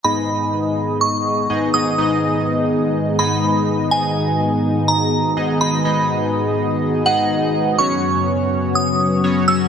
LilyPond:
<<
  \new Staff \with { instrumentName = "Synth bell" } { \time 4/4 \key gis \minor \tempo 4 = 124 b''2 cis'''4. dis'''8~ | dis'''4 r4. b''4. | gis''2 ais''4. b''8~ | b''4 r4. fis''4. |
cis'''2 dis'''4. e'''8 | }
  \new Staff \with { instrumentName = "Analog polysynth" } { \time 4/4 \key gis \minor <gis, b dis' gis' dis''>2. <gis, b dis' gis' dis''>8 <gis, b dis' gis' dis''>8 | <gis, b dis' gis' dis''>2~ <gis, b dis' gis' dis''>8 <gis, b dis' gis' dis''>4. | <gis, b dis' gis' dis''>2. <gis, b dis' gis' dis''>8 <gis, b dis' gis' dis''>8 | <gis, b dis' gis' dis''>2~ <gis, b dis' gis' dis''>8 <gis, b dis' gis' dis''>4. |
<fis b cis' fis' cis''>2. <fis b cis' fis' cis''>8 <fis b cis' fis' cis''>8 | }
  \new Staff \with { instrumentName = "Analog synth pad" } { \clef bass \time 4/4 \key gis \minor << { gis'1~ | gis'1 | fis'1~ | fis'1~ |
fis'1 | } \\ { <gis, dis b>1~ | <gis, dis b>1~ | <gis, dis b>1~ | <gis, dis b>1 |
<fis, cis b>1 | } >> }
>>